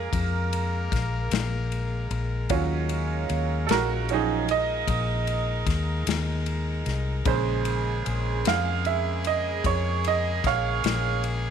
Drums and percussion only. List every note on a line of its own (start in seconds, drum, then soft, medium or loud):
0.13 kick medium
0.13 ride medium
0.53 ride medium
0.92 kick medium
0.92 snare soft
0.92 ride medium
1.31 snare loud
1.31 ride medium
1.72 ride medium
2.11 ride medium
2.49 kick loud
2.49 ride medium
2.89 ride medium
3.29 ride medium
3.69 snare loud
3.69 ride medium
4.09 ride medium
4.48 ride medium
4.88 kick medium
4.88 ride medium
5.27 ride medium
5.67 kick medium
5.67 snare soft
5.67 ride medium
6.07 snare loud
6.07 ride loud
6.46 ride medium
6.86 snare soft
6.86 ride medium
7.25 kick loud
7.25 ride medium
7.65 ride medium
8.06 ride medium
8.45 snare loud
8.45 ride medium
8.85 ride medium
9.24 ride medium
9.64 kick medium
9.64 ride medium
10.04 ride medium
10.44 kick medium
10.44 snare soft
10.44 ride medium
10.84 snare loud
10.84 ride medium
11.24 ride medium